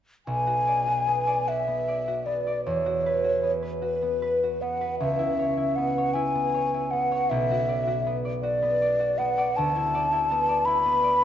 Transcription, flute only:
0.26 1.50 G#5 medium
1.48 2.28 E5 medium
2.26 2.65 D5 soft
2.65 3.52 C#5 medium
3.82 4.63 B4 soft
4.62 4.99 F#5 medium
5.00 5.77 E5 medium
5.76 6.15 F#5 medium
6.14 6.92 G#5 medium
6.91 7.31 F#5 medium
7.30 8.17 E5 medium
8.42 9.20 D5 medium
9.18 9.58 F#5 medium
9.56 10.67 A5 medium
10.65 11.24 B5 medium

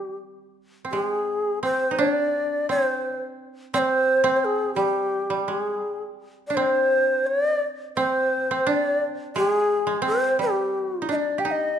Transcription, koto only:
0.00 0.99 G3 soft
0.00 0.84 C4 medium
0.00 0.16 D4 medium
0.85 1.62 C4 soft
0.93 2.04 G#3 medium
1.63 2.69 C4 medium
1.91 2.04 D#4 soft
1.99 4.41 D4 medium
2.69 3.74 C4 medium
3.74 4.23 C4 medium
4.24 6.56 C4 medium
4.76 5.30 G3 medium
5.30 5.54 G3 medium
5.48 5.77 G#3 soft
5.77 6.56 G3 soft
6.50 8.66 D4 soft
6.57 7.96 C4 medium
7.97 8.51 C4 medium
8.51 10.01 C4 medium
8.67 11.08 D4 medium
9.36 9.86 G#3 medium
9.87 10.45 G#3 medium
10.02 11.79 C4 medium
10.39 11.79 G3 medium
11.02 11.15 D#4 soft
11.09 11.51 D4 medium
11.38 11.79 G4 soft
11.45 11.79 D#4 medium

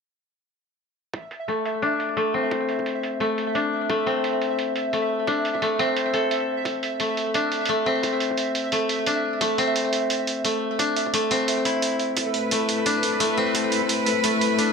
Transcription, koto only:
1.48 2.16 A3 medium
1.82 3.55 D4 medium
2.17 3.20 A3 medium
2.34 4.06 C4 medium
3.20 3.89 A3 medium
3.55 5.27 D4 medium
3.90 4.93 A3 medium
4.06 5.79 C4 medium
4.93 5.62 A3 medium
5.27 7.34 D4 medium
5.62 6.99 A3 medium
5.79 7.86 C4 medium
6.14 8.04 A4 medium
7.00 7.69 A3 medium
7.35 9.06 D4 medium
7.69 8.72 A3 medium
7.86 9.58 C4 medium
8.72 9.41 A3 medium
9.07 10.79 D4 medium
9.41 10.44 A3 medium
9.58 11.31 C4 medium
10.44 11.13 A3 medium
10.79 12.85 D4 medium
11.14 12.51 A3 medium
11.31 13.37 C4 medium
11.65 13.92 E4 medium
12.52 13.20 A3 medium
12.86 14.58 D4 medium
13.20 14.24 A3 medium
13.37 14.73 C4 medium
14.24 14.73 A3 medium
14.58 14.73 D4 medium

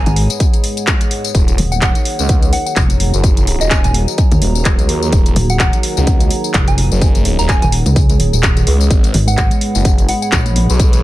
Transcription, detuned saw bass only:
1.35 1.57 D#1 loud
2.19 2.51 C#2 loud
3.14 3.59 F#1 loud
3.61 3.82 D#1 loud
4.42 4.77 D#1 medium
4.79 4.87 C#2 loud
4.89 5.11 D#2 loud
5.13 5.35 D#1 loud
5.97 6.29 C#2 loud
6.91 7.37 F#1 loud
7.39 7.60 D#1 loud
8.67 8.89 C#2 loud
8.91 9.13 G#1 loud
9.75 10.07 F#1 loud
10.70 11.03 B1 loud

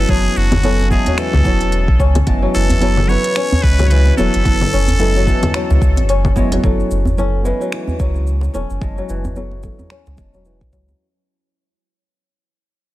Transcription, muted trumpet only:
0.00 0.11 A4 loud
0.09 0.38 G#4 loud
0.37 0.90 F#4 loud
0.91 1.20 G#4 medium
1.18 2.00 A4 loud
2.54 3.10 A4 loud
3.08 3.64 C#5 loud
3.62 3.84 B4 loud
3.86 4.17 B4 loud
3.86 3.91 C#5 medium
4.17 6.04 A4 loud

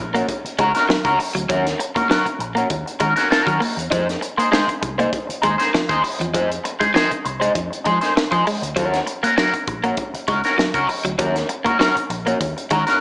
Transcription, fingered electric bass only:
0.00 0.21 A#1 medium
0.44 muted fingered electric bass stroke soft
0.59 0.71 C#2 medium
0.89 muted fingered electric bass stroke soft
1.05 1.16 C#2 medium
1.35 1.46 D2 medium
1.50 1.73 D#2 loud
1.96 muted fingered electric bass stroke soft
2.25 muted fingered electric bass stroke soft
2.39 2.62 A#1 medium
2.70 2.83 D#2 loud
3.01 3.13 D#3 medium
3.47 3.58 D#3 loud
3.77 3.88 E2 medium
3.92 4.15 F2 loud
4.38 muted fingered electric bass stroke soft
4.68 muted fingered electric bass stroke soft
4.83 5.06 C2 medium
5.29 muted fingered electric bass stroke soft
5.43 5.55 D#2 medium
5.74 muted fingered electric bass stroke soft
5.90 6.00 D#2 medium
6.20 6.35 E2 loud
6.35 6.57 F2 medium
6.81 muted fingered electric bass stroke soft
7.11 muted fingered electric bass stroke soft
7.25 7.48 C2 medium
7.56 7.68 F2 loud
7.86 7.98 F3 loud
8.31 8.43 F3 medium
8.62 8.73 D2 medium
8.77 9.00 D#2 loud
9.23 muted fingered electric bass stroke soft
9.53 muted fingered electric bass stroke soft
9.68 9.91 A#1 medium
10.14 muted fingered electric bass stroke soft
10.28 10.41 C#2 medium
10.58 muted fingered electric bass stroke soft
10.74 10.85 C#2 medium
11.04 11.15 D2 medium
11.20 11.42 D#2 loud
11.66 muted fingered electric bass stroke soft
11.96 muted fingered electric bass stroke soft
12.10 12.33 A#1 loud
12.41 12.53 D#2 loud
12.71 12.83 D#3 medium

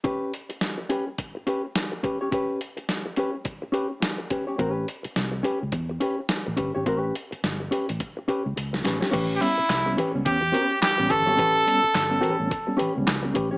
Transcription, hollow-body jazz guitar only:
0.04 0.31 C#4 medium
0.04 0.31 G4 medium
0.04 0.32 B4 medium
0.49 muted hollow-body jazz guitar stroke soft
0.78 muted hollow-body jazz guitar stroke soft
0.89 1.08 C#4 medium
0.89 1.07 G4 medium
0.89 1.06 B4 medium
1.07 muted hollow-body jazz guitar stroke soft
1.18 muted hollow-body jazz guitar stroke soft
1.35 muted hollow-body jazz guitar stroke soft
1.47 1.65 C#4 medium
1.47 1.65 G4 medium
1.47 1.63 B4 medium
1.65 muted hollow-body jazz guitar stroke soft
1.76 muted hollow-body jazz guitar stroke soft
1.92 muted hollow-body jazz guitar stroke soft
2.03 2.18 C#4 medium
2.03 2.18 G4 medium
2.03 2.19 B4 medium
2.21 2.30 C#4 soft
2.21 2.31 G4 soft
2.21 2.31 C#5 medium
2.31 2.58 C#4 medium
2.31 2.59 G4 medium
2.31 2.60 B4 medium
2.77 muted hollow-body jazz guitar stroke soft
3.06 muted hollow-body jazz guitar stroke soft
3.17 3.35 C#4 medium
3.17 3.33 G4 medium
3.17 3.32 B4 medium
3.33 muted hollow-body jazz guitar stroke soft
3.44 muted hollow-body jazz guitar stroke soft
3.62 muted hollow-body jazz guitar stroke soft
3.72 3.91 C#4 medium
3.72 3.90 G4 medium
3.72 3.88 B4 medium
3.90 muted hollow-body jazz guitar stroke soft
4.00 muted hollow-body jazz guitar stroke soft
4.18 muted hollow-body jazz guitar stroke soft
4.30 4.45 C#4 soft
4.30 4.46 G4 medium
4.30 4.46 B4 medium
4.47 4.57 C#4 soft
4.47 4.58 G4 soft
4.47 4.57 C#5 medium
4.58 4.69 C4 medium
4.58 4.70 F#4 medium
4.58 4.71 A#4 medium
4.69 4.85 C#4 medium
4.69 4.86 G4 medium
4.69 4.87 B4 medium
5.03 muted hollow-body jazz guitar stroke soft
5.32 muted hollow-body jazz guitar stroke soft
5.43 5.62 C#4 medium
5.43 5.61 G4 medium
5.43 5.60 B4 medium
5.61 muted hollow-body jazz guitar stroke soft
5.72 muted hollow-body jazz guitar stroke soft
5.89 muted hollow-body jazz guitar stroke medium
6.00 6.19 C#4 medium
6.00 6.19 G4 medium
6.00 6.17 B4 medium
6.18 muted hollow-body jazz guitar stroke soft
6.30 muted hollow-body jazz guitar stroke soft
6.47 muted hollow-body jazz guitar stroke soft
6.57 6.72 C#4 medium
6.57 6.72 G4 medium
6.57 6.73 B4 medium
6.75 6.85 C#4 soft
6.75 6.85 G4 medium
6.75 6.84 C#5 medium
6.86 6.97 C4 medium
6.86 6.98 F#4 loud
6.86 6.99 A#4 medium
6.97 7.13 C#4 medium
6.97 7.13 G4 loud
6.97 7.14 B4 medium
7.31 muted hollow-body jazz guitar stroke soft
7.60 muted hollow-body jazz guitar stroke soft
7.71 7.89 C#4 medium
7.71 7.89 G4 medium
7.71 7.88 B4 medium
7.89 muted hollow-body jazz guitar stroke soft
8.00 muted hollow-body jazz guitar stroke soft
8.17 muted hollow-body jazz guitar stroke soft
8.28 8.46 C#4 medium
8.28 8.45 G4 medium
8.28 8.44 B4 medium
8.45 muted hollow-body jazz guitar stroke soft
8.56 muted hollow-body jazz guitar stroke soft
8.73 muted hollow-body jazz guitar stroke soft
8.84 8.99 C#4 soft
8.84 8.99 G4 soft
8.84 9.00 B4 medium
9.01 9.10 C#4 soft
9.01 9.11 G4 medium
9.01 9.11 C#5 medium
9.11 9.39 C#4 medium
9.11 9.39 G4 medium
9.11 9.39 B4 medium
9.58 muted hollow-body jazz guitar stroke soft
9.86 muted hollow-body jazz guitar stroke soft
9.97 10.15 C#4 medium
9.97 10.14 G4 medium
9.97 10.13 B4 medium
10.14 muted hollow-body jazz guitar stroke soft
10.25 muted hollow-body jazz guitar stroke soft
10.41 muted hollow-body jazz guitar stroke medium
10.52 10.75 C#4 medium
10.52 10.70 G4 medium
10.52 10.69 B4 medium
10.70 muted hollow-body jazz guitar stroke soft
10.81 muted hollow-body jazz guitar stroke soft
10.98 muted hollow-body jazz guitar stroke medium
11.09 11.24 C#4 medium
11.09 11.25 G4 medium
11.09 11.25 B4 medium
11.26 11.36 C#4 medium
11.26 11.37 G4 medium
11.26 11.36 C#5 medium
11.37 11.64 C#4 medium
11.37 11.65 G4 medium
11.37 11.65 B4 medium
11.83 muted hollow-body jazz guitar stroke soft
12.10 muted hollow-body jazz guitar stroke soft
12.21 12.44 C#4 medium
12.21 12.39 G4 medium
12.21 12.38 B4 medium
12.39 muted hollow-body jazz guitar stroke soft
12.49 muted hollow-body jazz guitar stroke soft
12.67 muted hollow-body jazz guitar stroke soft
12.77 12.96 C#4 medium
12.77 12.95 G4 medium
12.77 12.94 B4 medium
12.95 muted hollow-body jazz guitar stroke soft
13.06 muted hollow-body jazz guitar stroke soft
13.23 muted hollow-body jazz guitar stroke medium
13.34 13.49 C#4 medium
13.34 13.50 G4 medium
13.34 13.50 B4 medium
13.51 13.58 C#4 soft
13.51 13.58 G4 medium
13.51 13.58 C#5 medium

